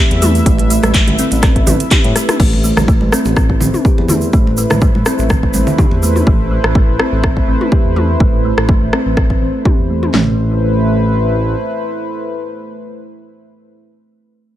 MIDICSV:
0, 0, Header, 1, 5, 480
1, 0, Start_track
1, 0, Key_signature, 0, "minor"
1, 0, Tempo, 483871
1, 457, Time_signature, 4, 2, 24, 8
1, 14448, End_track
2, 0, Start_track
2, 0, Title_t, "Analog synth pad"
2, 0, Program_c, 0, 89
2, 0, Note_on_c, 0, 57, 87
2, 0, Note_on_c, 0, 64, 77
2, 0, Note_on_c, 0, 71, 79
2, 0, Note_on_c, 0, 76, 100
2, 2337, Note_off_c, 0, 57, 0
2, 2337, Note_off_c, 0, 64, 0
2, 2337, Note_off_c, 0, 71, 0
2, 2365, Note_off_c, 0, 76, 0
2, 2380, Note_on_c, 0, 71, 79
2, 2381, Note_on_c, 0, 57, 82
2, 2381, Note_on_c, 0, 64, 82
2, 2381, Note_on_c, 0, 72, 93
2, 10019, Note_off_c, 0, 71, 0
2, 10019, Note_off_c, 0, 72, 0
2, 10020, Note_off_c, 0, 57, 0
2, 10020, Note_off_c, 0, 64, 0
2, 10056, Note_on_c, 0, 57, 84
2, 10056, Note_on_c, 0, 64, 78
2, 10056, Note_on_c, 0, 72, 92
2, 10058, Note_on_c, 0, 71, 79
2, 13691, Note_off_c, 0, 57, 0
2, 13691, Note_off_c, 0, 64, 0
2, 13691, Note_off_c, 0, 72, 0
2, 13692, Note_off_c, 0, 71, 0
2, 14448, End_track
3, 0, Start_track
3, 0, Title_t, "Kalimba"
3, 0, Program_c, 1, 108
3, 218, Note_on_c, 1, 57, 76
3, 335, Note_off_c, 1, 57, 0
3, 458, Note_on_c, 1, 57, 88
3, 581, Note_off_c, 1, 57, 0
3, 699, Note_on_c, 1, 57, 77
3, 815, Note_off_c, 1, 57, 0
3, 938, Note_on_c, 1, 57, 88
3, 1054, Note_off_c, 1, 57, 0
3, 1179, Note_on_c, 1, 60, 98
3, 1295, Note_off_c, 1, 60, 0
3, 1418, Note_on_c, 1, 60, 85
3, 1541, Note_off_c, 1, 60, 0
3, 1659, Note_on_c, 1, 60, 72
3, 1775, Note_off_c, 1, 60, 0
3, 1897, Note_on_c, 1, 67, 84
3, 2014, Note_off_c, 1, 67, 0
3, 2137, Note_on_c, 1, 57, 77
3, 2254, Note_off_c, 1, 57, 0
3, 2379, Note_on_c, 1, 57, 84
3, 2501, Note_off_c, 1, 57, 0
3, 2618, Note_on_c, 1, 57, 73
3, 2734, Note_off_c, 1, 57, 0
3, 2858, Note_on_c, 1, 57, 85
3, 2975, Note_off_c, 1, 57, 0
3, 3099, Note_on_c, 1, 60, 102
3, 3215, Note_off_c, 1, 60, 0
3, 3340, Note_on_c, 1, 60, 78
3, 3462, Note_off_c, 1, 60, 0
3, 3581, Note_on_c, 1, 60, 73
3, 3696, Note_off_c, 1, 60, 0
3, 3821, Note_on_c, 1, 67, 79
3, 3936, Note_off_c, 1, 67, 0
3, 4064, Note_on_c, 1, 57, 74
3, 4177, Note_off_c, 1, 57, 0
3, 4302, Note_on_c, 1, 57, 86
3, 4423, Note_off_c, 1, 57, 0
3, 4540, Note_on_c, 1, 57, 73
3, 4656, Note_off_c, 1, 57, 0
3, 4780, Note_on_c, 1, 57, 83
3, 4896, Note_off_c, 1, 57, 0
3, 5022, Note_on_c, 1, 60, 99
3, 5136, Note_off_c, 1, 60, 0
3, 5262, Note_on_c, 1, 60, 76
3, 5383, Note_off_c, 1, 60, 0
3, 5501, Note_on_c, 1, 60, 75
3, 5616, Note_off_c, 1, 60, 0
3, 5740, Note_on_c, 1, 67, 79
3, 5856, Note_off_c, 1, 67, 0
3, 5979, Note_on_c, 1, 57, 76
3, 6095, Note_off_c, 1, 57, 0
3, 6217, Note_on_c, 1, 57, 86
3, 6340, Note_off_c, 1, 57, 0
3, 6457, Note_on_c, 1, 57, 72
3, 6574, Note_off_c, 1, 57, 0
3, 6697, Note_on_c, 1, 57, 82
3, 6814, Note_off_c, 1, 57, 0
3, 6939, Note_on_c, 1, 60, 93
3, 7055, Note_off_c, 1, 60, 0
3, 7180, Note_on_c, 1, 60, 77
3, 7302, Note_off_c, 1, 60, 0
3, 7420, Note_on_c, 1, 60, 74
3, 7535, Note_off_c, 1, 60, 0
3, 7659, Note_on_c, 1, 67, 75
3, 7775, Note_off_c, 1, 67, 0
3, 7900, Note_on_c, 1, 57, 74
3, 8015, Note_off_c, 1, 57, 0
3, 8141, Note_on_c, 1, 57, 78
3, 8263, Note_off_c, 1, 57, 0
3, 8380, Note_on_c, 1, 57, 69
3, 8495, Note_off_c, 1, 57, 0
3, 8619, Note_on_c, 1, 57, 80
3, 8735, Note_off_c, 1, 57, 0
3, 8857, Note_on_c, 1, 60, 97
3, 8974, Note_off_c, 1, 60, 0
3, 9098, Note_on_c, 1, 60, 74
3, 9221, Note_off_c, 1, 60, 0
3, 9338, Note_on_c, 1, 60, 71
3, 9454, Note_off_c, 1, 60, 0
3, 9579, Note_on_c, 1, 67, 71
3, 9695, Note_off_c, 1, 67, 0
3, 9820, Note_on_c, 1, 57, 71
3, 9935, Note_off_c, 1, 57, 0
3, 10058, Note_on_c, 1, 57, 93
3, 10281, Note_off_c, 1, 57, 0
3, 14448, End_track
4, 0, Start_track
4, 0, Title_t, "Analog synth bass"
4, 0, Program_c, 2, 38
4, 108, Note_on_c, 2, 40, 81
4, 412, Note_off_c, 2, 40, 0
4, 457, Note_on_c, 2, 33, 99
4, 773, Note_off_c, 2, 33, 0
4, 826, Note_on_c, 2, 33, 90
4, 999, Note_off_c, 2, 33, 0
4, 1066, Note_on_c, 2, 33, 93
4, 1148, Note_off_c, 2, 33, 0
4, 1306, Note_on_c, 2, 33, 96
4, 1611, Note_off_c, 2, 33, 0
4, 1655, Note_on_c, 2, 33, 86
4, 1753, Note_off_c, 2, 33, 0
4, 2027, Note_on_c, 2, 45, 86
4, 2109, Note_off_c, 2, 45, 0
4, 2378, Note_on_c, 2, 33, 91
4, 2694, Note_off_c, 2, 33, 0
4, 2747, Note_on_c, 2, 33, 87
4, 2920, Note_off_c, 2, 33, 0
4, 2988, Note_on_c, 2, 33, 92
4, 3069, Note_off_c, 2, 33, 0
4, 3227, Note_on_c, 2, 33, 90
4, 3532, Note_off_c, 2, 33, 0
4, 3579, Note_on_c, 2, 33, 86
4, 3674, Note_off_c, 2, 33, 0
4, 3947, Note_on_c, 2, 40, 83
4, 4252, Note_off_c, 2, 40, 0
4, 4299, Note_on_c, 2, 33, 97
4, 4614, Note_off_c, 2, 33, 0
4, 4667, Note_on_c, 2, 33, 91
4, 4840, Note_off_c, 2, 33, 0
4, 4907, Note_on_c, 2, 33, 90
4, 4988, Note_off_c, 2, 33, 0
4, 5147, Note_on_c, 2, 33, 91
4, 5452, Note_off_c, 2, 33, 0
4, 5498, Note_on_c, 2, 33, 86
4, 5594, Note_off_c, 2, 33, 0
4, 5868, Note_on_c, 2, 40, 78
4, 6172, Note_off_c, 2, 40, 0
4, 6218, Note_on_c, 2, 33, 97
4, 6534, Note_off_c, 2, 33, 0
4, 6587, Note_on_c, 2, 33, 94
4, 6760, Note_off_c, 2, 33, 0
4, 6828, Note_on_c, 2, 33, 89
4, 6909, Note_off_c, 2, 33, 0
4, 7065, Note_on_c, 2, 33, 92
4, 7371, Note_off_c, 2, 33, 0
4, 7416, Note_on_c, 2, 33, 80
4, 7513, Note_off_c, 2, 33, 0
4, 7786, Note_on_c, 2, 40, 77
4, 8091, Note_off_c, 2, 40, 0
4, 8138, Note_on_c, 2, 33, 89
4, 8454, Note_off_c, 2, 33, 0
4, 8507, Note_on_c, 2, 33, 91
4, 8680, Note_off_c, 2, 33, 0
4, 8748, Note_on_c, 2, 33, 91
4, 8829, Note_off_c, 2, 33, 0
4, 8987, Note_on_c, 2, 33, 90
4, 9292, Note_off_c, 2, 33, 0
4, 9338, Note_on_c, 2, 33, 80
4, 9434, Note_off_c, 2, 33, 0
4, 9707, Note_on_c, 2, 40, 79
4, 10012, Note_off_c, 2, 40, 0
4, 10058, Note_on_c, 2, 33, 88
4, 11458, Note_off_c, 2, 33, 0
4, 14448, End_track
5, 0, Start_track
5, 0, Title_t, "Drums"
5, 109, Note_on_c, 9, 62, 51
5, 110, Note_on_c, 9, 42, 34
5, 209, Note_off_c, 9, 62, 0
5, 210, Note_off_c, 9, 42, 0
5, 213, Note_on_c, 9, 63, 63
5, 219, Note_on_c, 9, 46, 80
5, 219, Note_on_c, 9, 47, 99
5, 220, Note_on_c, 9, 82, 91
5, 313, Note_off_c, 9, 63, 0
5, 318, Note_off_c, 9, 46, 0
5, 318, Note_off_c, 9, 47, 0
5, 319, Note_off_c, 9, 82, 0
5, 349, Note_on_c, 9, 42, 32
5, 353, Note_on_c, 9, 82, 49
5, 448, Note_off_c, 9, 42, 0
5, 452, Note_off_c, 9, 82, 0
5, 457, Note_on_c, 9, 36, 113
5, 458, Note_on_c, 9, 42, 74
5, 460, Note_on_c, 9, 82, 40
5, 556, Note_off_c, 9, 36, 0
5, 558, Note_off_c, 9, 42, 0
5, 559, Note_off_c, 9, 82, 0
5, 580, Note_on_c, 9, 62, 55
5, 589, Note_on_c, 9, 42, 35
5, 679, Note_off_c, 9, 62, 0
5, 688, Note_off_c, 9, 42, 0
5, 698, Note_on_c, 9, 46, 92
5, 703, Note_on_c, 9, 82, 98
5, 797, Note_off_c, 9, 46, 0
5, 802, Note_off_c, 9, 82, 0
5, 822, Note_on_c, 9, 63, 91
5, 828, Note_on_c, 9, 37, 81
5, 828, Note_on_c, 9, 42, 35
5, 830, Note_on_c, 9, 82, 52
5, 921, Note_off_c, 9, 63, 0
5, 927, Note_off_c, 9, 37, 0
5, 927, Note_off_c, 9, 42, 0
5, 929, Note_off_c, 9, 82, 0
5, 934, Note_on_c, 9, 82, 36
5, 935, Note_on_c, 9, 62, 43
5, 937, Note_on_c, 9, 36, 117
5, 937, Note_on_c, 9, 63, 65
5, 938, Note_on_c, 9, 39, 106
5, 938, Note_on_c, 9, 42, 74
5, 1033, Note_off_c, 9, 82, 0
5, 1034, Note_off_c, 9, 62, 0
5, 1036, Note_off_c, 9, 36, 0
5, 1036, Note_off_c, 9, 63, 0
5, 1037, Note_off_c, 9, 39, 0
5, 1037, Note_off_c, 9, 42, 0
5, 1064, Note_on_c, 9, 64, 94
5, 1067, Note_on_c, 9, 42, 36
5, 1068, Note_on_c, 9, 63, 85
5, 1164, Note_off_c, 9, 64, 0
5, 1167, Note_off_c, 9, 42, 0
5, 1168, Note_off_c, 9, 63, 0
5, 1177, Note_on_c, 9, 46, 80
5, 1177, Note_on_c, 9, 82, 93
5, 1276, Note_off_c, 9, 46, 0
5, 1277, Note_off_c, 9, 82, 0
5, 1299, Note_on_c, 9, 62, 51
5, 1307, Note_on_c, 9, 42, 51
5, 1309, Note_on_c, 9, 82, 54
5, 1398, Note_off_c, 9, 62, 0
5, 1406, Note_off_c, 9, 42, 0
5, 1409, Note_off_c, 9, 82, 0
5, 1416, Note_on_c, 9, 36, 117
5, 1416, Note_on_c, 9, 37, 86
5, 1416, Note_on_c, 9, 39, 33
5, 1416, Note_on_c, 9, 42, 67
5, 1418, Note_on_c, 9, 82, 40
5, 1515, Note_off_c, 9, 37, 0
5, 1515, Note_off_c, 9, 39, 0
5, 1515, Note_off_c, 9, 42, 0
5, 1516, Note_off_c, 9, 36, 0
5, 1517, Note_off_c, 9, 82, 0
5, 1546, Note_on_c, 9, 36, 60
5, 1547, Note_on_c, 9, 42, 34
5, 1645, Note_off_c, 9, 36, 0
5, 1646, Note_off_c, 9, 42, 0
5, 1654, Note_on_c, 9, 64, 110
5, 1657, Note_on_c, 9, 46, 93
5, 1657, Note_on_c, 9, 47, 86
5, 1657, Note_on_c, 9, 62, 41
5, 1657, Note_on_c, 9, 63, 94
5, 1658, Note_on_c, 9, 82, 88
5, 1753, Note_off_c, 9, 64, 0
5, 1756, Note_off_c, 9, 46, 0
5, 1756, Note_off_c, 9, 47, 0
5, 1756, Note_off_c, 9, 62, 0
5, 1756, Note_off_c, 9, 63, 0
5, 1757, Note_off_c, 9, 82, 0
5, 1787, Note_on_c, 9, 42, 46
5, 1790, Note_on_c, 9, 82, 48
5, 1886, Note_off_c, 9, 42, 0
5, 1889, Note_off_c, 9, 82, 0
5, 1896, Note_on_c, 9, 82, 36
5, 1897, Note_on_c, 9, 36, 121
5, 1897, Note_on_c, 9, 39, 103
5, 1897, Note_on_c, 9, 42, 69
5, 1897, Note_on_c, 9, 47, 80
5, 1995, Note_off_c, 9, 82, 0
5, 1996, Note_off_c, 9, 36, 0
5, 1996, Note_off_c, 9, 39, 0
5, 1996, Note_off_c, 9, 42, 0
5, 1996, Note_off_c, 9, 47, 0
5, 2028, Note_on_c, 9, 42, 35
5, 2029, Note_on_c, 9, 62, 51
5, 2127, Note_off_c, 9, 42, 0
5, 2128, Note_off_c, 9, 62, 0
5, 2139, Note_on_c, 9, 37, 60
5, 2139, Note_on_c, 9, 46, 78
5, 2145, Note_on_c, 9, 82, 93
5, 2238, Note_off_c, 9, 37, 0
5, 2238, Note_off_c, 9, 46, 0
5, 2244, Note_off_c, 9, 82, 0
5, 2270, Note_on_c, 9, 37, 73
5, 2270, Note_on_c, 9, 42, 33
5, 2270, Note_on_c, 9, 47, 80
5, 2271, Note_on_c, 9, 82, 51
5, 2369, Note_off_c, 9, 37, 0
5, 2369, Note_off_c, 9, 42, 0
5, 2369, Note_off_c, 9, 47, 0
5, 2370, Note_off_c, 9, 82, 0
5, 2378, Note_on_c, 9, 36, 116
5, 2380, Note_on_c, 9, 49, 93
5, 2383, Note_on_c, 9, 82, 40
5, 2477, Note_off_c, 9, 36, 0
5, 2479, Note_off_c, 9, 49, 0
5, 2483, Note_off_c, 9, 82, 0
5, 2513, Note_on_c, 9, 62, 51
5, 2612, Note_off_c, 9, 62, 0
5, 2618, Note_on_c, 9, 82, 91
5, 2717, Note_off_c, 9, 82, 0
5, 2743, Note_on_c, 9, 64, 101
5, 2747, Note_on_c, 9, 63, 95
5, 2750, Note_on_c, 9, 37, 80
5, 2752, Note_on_c, 9, 82, 49
5, 2843, Note_off_c, 9, 64, 0
5, 2846, Note_off_c, 9, 63, 0
5, 2849, Note_off_c, 9, 37, 0
5, 2851, Note_off_c, 9, 82, 0
5, 2858, Note_on_c, 9, 36, 122
5, 2858, Note_on_c, 9, 62, 40
5, 2863, Note_on_c, 9, 82, 35
5, 2957, Note_off_c, 9, 62, 0
5, 2958, Note_off_c, 9, 36, 0
5, 2962, Note_off_c, 9, 82, 0
5, 2983, Note_on_c, 9, 63, 93
5, 3082, Note_off_c, 9, 63, 0
5, 3099, Note_on_c, 9, 37, 90
5, 3104, Note_on_c, 9, 82, 86
5, 3199, Note_off_c, 9, 37, 0
5, 3203, Note_off_c, 9, 82, 0
5, 3223, Note_on_c, 9, 82, 48
5, 3230, Note_on_c, 9, 62, 54
5, 3322, Note_off_c, 9, 82, 0
5, 3329, Note_off_c, 9, 62, 0
5, 3338, Note_on_c, 9, 36, 118
5, 3339, Note_on_c, 9, 82, 37
5, 3340, Note_on_c, 9, 37, 85
5, 3437, Note_off_c, 9, 36, 0
5, 3438, Note_off_c, 9, 82, 0
5, 3439, Note_off_c, 9, 37, 0
5, 3468, Note_on_c, 9, 36, 58
5, 3567, Note_off_c, 9, 36, 0
5, 3575, Note_on_c, 9, 63, 88
5, 3577, Note_on_c, 9, 64, 111
5, 3585, Note_on_c, 9, 62, 42
5, 3585, Note_on_c, 9, 82, 94
5, 3675, Note_off_c, 9, 63, 0
5, 3676, Note_off_c, 9, 64, 0
5, 3684, Note_off_c, 9, 62, 0
5, 3684, Note_off_c, 9, 82, 0
5, 3710, Note_on_c, 9, 47, 73
5, 3710, Note_on_c, 9, 82, 47
5, 3809, Note_off_c, 9, 47, 0
5, 3809, Note_off_c, 9, 82, 0
5, 3818, Note_on_c, 9, 36, 112
5, 3822, Note_on_c, 9, 82, 38
5, 3917, Note_off_c, 9, 36, 0
5, 3921, Note_off_c, 9, 82, 0
5, 3949, Note_on_c, 9, 62, 51
5, 4049, Note_off_c, 9, 62, 0
5, 4052, Note_on_c, 9, 64, 106
5, 4058, Note_on_c, 9, 82, 99
5, 4060, Note_on_c, 9, 47, 84
5, 4151, Note_off_c, 9, 64, 0
5, 4157, Note_off_c, 9, 82, 0
5, 4159, Note_off_c, 9, 47, 0
5, 4178, Note_on_c, 9, 82, 52
5, 4277, Note_off_c, 9, 82, 0
5, 4296, Note_on_c, 9, 82, 40
5, 4298, Note_on_c, 9, 36, 116
5, 4396, Note_off_c, 9, 82, 0
5, 4398, Note_off_c, 9, 36, 0
5, 4435, Note_on_c, 9, 62, 49
5, 4534, Note_off_c, 9, 62, 0
5, 4536, Note_on_c, 9, 82, 100
5, 4635, Note_off_c, 9, 82, 0
5, 4664, Note_on_c, 9, 63, 94
5, 4665, Note_on_c, 9, 64, 104
5, 4667, Note_on_c, 9, 82, 53
5, 4669, Note_on_c, 9, 37, 85
5, 4763, Note_off_c, 9, 63, 0
5, 4765, Note_off_c, 9, 64, 0
5, 4766, Note_off_c, 9, 82, 0
5, 4768, Note_off_c, 9, 37, 0
5, 4773, Note_on_c, 9, 82, 38
5, 4778, Note_on_c, 9, 36, 119
5, 4872, Note_off_c, 9, 82, 0
5, 4877, Note_off_c, 9, 36, 0
5, 4911, Note_on_c, 9, 63, 92
5, 5010, Note_off_c, 9, 63, 0
5, 5017, Note_on_c, 9, 82, 101
5, 5019, Note_on_c, 9, 37, 94
5, 5117, Note_off_c, 9, 82, 0
5, 5118, Note_off_c, 9, 37, 0
5, 5144, Note_on_c, 9, 82, 52
5, 5158, Note_on_c, 9, 62, 48
5, 5243, Note_off_c, 9, 82, 0
5, 5255, Note_on_c, 9, 64, 85
5, 5256, Note_on_c, 9, 82, 43
5, 5257, Note_off_c, 9, 62, 0
5, 5258, Note_on_c, 9, 36, 121
5, 5259, Note_on_c, 9, 37, 89
5, 5355, Note_off_c, 9, 64, 0
5, 5355, Note_off_c, 9, 82, 0
5, 5357, Note_off_c, 9, 36, 0
5, 5358, Note_off_c, 9, 37, 0
5, 5388, Note_on_c, 9, 36, 60
5, 5487, Note_off_c, 9, 36, 0
5, 5493, Note_on_c, 9, 62, 38
5, 5493, Note_on_c, 9, 82, 99
5, 5494, Note_on_c, 9, 63, 92
5, 5592, Note_off_c, 9, 62, 0
5, 5592, Note_off_c, 9, 82, 0
5, 5593, Note_off_c, 9, 63, 0
5, 5624, Note_on_c, 9, 64, 113
5, 5626, Note_on_c, 9, 82, 54
5, 5723, Note_off_c, 9, 64, 0
5, 5725, Note_off_c, 9, 82, 0
5, 5738, Note_on_c, 9, 36, 119
5, 5739, Note_on_c, 9, 47, 74
5, 5741, Note_on_c, 9, 82, 39
5, 5744, Note_on_c, 9, 64, 110
5, 5837, Note_off_c, 9, 36, 0
5, 5838, Note_off_c, 9, 47, 0
5, 5841, Note_off_c, 9, 82, 0
5, 5843, Note_off_c, 9, 64, 0
5, 5866, Note_on_c, 9, 62, 56
5, 5965, Note_off_c, 9, 62, 0
5, 5980, Note_on_c, 9, 82, 97
5, 6079, Note_off_c, 9, 82, 0
5, 6109, Note_on_c, 9, 47, 71
5, 6113, Note_on_c, 9, 82, 52
5, 6208, Note_off_c, 9, 47, 0
5, 6212, Note_off_c, 9, 82, 0
5, 6218, Note_on_c, 9, 36, 118
5, 6318, Note_off_c, 9, 36, 0
5, 6588, Note_on_c, 9, 37, 85
5, 6687, Note_off_c, 9, 37, 0
5, 6698, Note_on_c, 9, 36, 120
5, 6797, Note_off_c, 9, 36, 0
5, 6939, Note_on_c, 9, 37, 92
5, 7038, Note_off_c, 9, 37, 0
5, 7178, Note_on_c, 9, 36, 117
5, 7179, Note_on_c, 9, 37, 91
5, 7277, Note_off_c, 9, 36, 0
5, 7279, Note_off_c, 9, 37, 0
5, 7307, Note_on_c, 9, 36, 60
5, 7407, Note_off_c, 9, 36, 0
5, 7549, Note_on_c, 9, 47, 74
5, 7649, Note_off_c, 9, 47, 0
5, 7658, Note_on_c, 9, 36, 113
5, 7757, Note_off_c, 9, 36, 0
5, 7899, Note_on_c, 9, 47, 88
5, 7998, Note_off_c, 9, 47, 0
5, 8137, Note_on_c, 9, 36, 117
5, 8237, Note_off_c, 9, 36, 0
5, 8509, Note_on_c, 9, 37, 82
5, 8608, Note_off_c, 9, 37, 0
5, 8617, Note_on_c, 9, 36, 118
5, 8717, Note_off_c, 9, 36, 0
5, 8859, Note_on_c, 9, 37, 87
5, 8958, Note_off_c, 9, 37, 0
5, 9097, Note_on_c, 9, 36, 115
5, 9098, Note_on_c, 9, 37, 88
5, 9196, Note_off_c, 9, 36, 0
5, 9197, Note_off_c, 9, 37, 0
5, 9227, Note_on_c, 9, 36, 57
5, 9326, Note_off_c, 9, 36, 0
5, 9577, Note_on_c, 9, 36, 115
5, 9577, Note_on_c, 9, 47, 77
5, 9676, Note_off_c, 9, 36, 0
5, 9676, Note_off_c, 9, 47, 0
5, 9948, Note_on_c, 9, 47, 70
5, 10047, Note_off_c, 9, 47, 0
5, 10056, Note_on_c, 9, 38, 96
5, 10056, Note_on_c, 9, 39, 82
5, 10056, Note_on_c, 9, 43, 95
5, 10155, Note_off_c, 9, 38, 0
5, 10155, Note_off_c, 9, 39, 0
5, 10155, Note_off_c, 9, 43, 0
5, 14448, End_track
0, 0, End_of_file